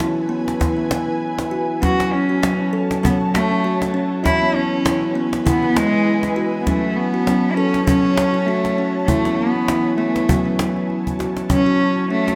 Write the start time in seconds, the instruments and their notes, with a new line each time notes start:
Already playing: ambient pad E4 B4 G#5
0.00 kalimba E3 E4, cajon slap
0.29 kalimba B3
0.48 cajon slap
0.60 kalimba E3 E4, cajon bass, cajon slap
0.77 kalimba B3
0.91 cajon slap
1.39 cajon slap
1.51 kalimba F#4
1.81 kalimba F#3 C#4, ambient pad F#4 C#5 A5, cello F#4, cajon bass, cajon slap
2.00 cajon slap
2.13 cello C#4
2.29 kalimba F#4
2.43 kalimba F#3 C#4, cajon slap
2.73 kalimba A4
2.91 cajon slap
3.03 kalimba F#3 C#4, cello B3, cajon bass
3.21 cajon slap
3.34 cello A3, kalimba F#4, cajon slap
3.51 kalimba C#4, cajon slap
3.64 kalimba F#4
3.82 cajon slap
3.94 kalimba C#4
4.24 kalimba E3 E4, ambient pad E4 B4 G#5, cello E4, cajon bass, cajon slap
4.41 kalimba B3
4.55 cello C#4
4.85 kalimba E3 E4, cajon slap
5.15 kalimba B3
5.33 cajon slap
5.46 kalimba E3 E4, cello B3, cajon bass
5.62 kalimba B3, cajon slap
5.76 cello G#3, cajon slap
5.93 cajon slap
6.23 cajon slap
6.36 kalimba F#4
6.60 cello B3
6.67 kalimba F#3 C#4, cello A3, ambient pad F#4 C#5 A5, cajon bass, cajon slap
6.97 cello B3
7.14 kalimba F#4
7.27 kalimba F#3 C#4, cajon slap
7.51 cello C#4 E4
7.57 kalimba A4
7.74 cajon slap
7.86 kalimba F#3 C#4, cello C#4, cajon bass
8.04 cajon slap
8.17 kalimba F#4, cajon slap
8.34 kalimba C#4, cajon slap
8.46 cello A3, kalimba F#4
8.65 cajon slap
8.78 kalimba C#4
9.06 kalimba E3 E4, cello A3, ambient pad E4 B4 G#5, cajon bass
9.25 kalimba B3, cajon slap
9.35 cello B3, cajon slap
9.56 cajon slap
9.68 kalimba E3 E4, cajon slap
9.97 cello A3, kalimba B3
10.16 cajon slap
10.29 kalimba F#3 F#4, ambient pad F#4 C#5 A5, cajon bass
10.45 kalimba C#4
10.59 cajon slap
10.76 cajon slap
10.90 cajon slap
11.07 cajon bass
11.19 kalimba F#4, cajon slap
11.37 cajon slap
11.49 kalimba F#3 C#4, ambient pad F#4 C#5 A5, cajon bass
11.53 cello C#4
11.66 kalimba F#4
12.11 cello A3, kalimba C#4
12.27 kalimba F#4, cajon slap